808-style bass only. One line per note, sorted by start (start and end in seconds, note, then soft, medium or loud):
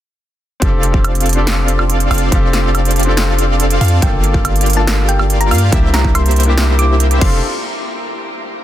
0.62 2.09 F1 medium
2.11 2.30 F1 loud
3.81 4.00 F2 loud
4.02 5.53 G1 loud
5.51 5.70 G2 loud
5.72 7.19 C2 loud
7.21 7.41 F1 loud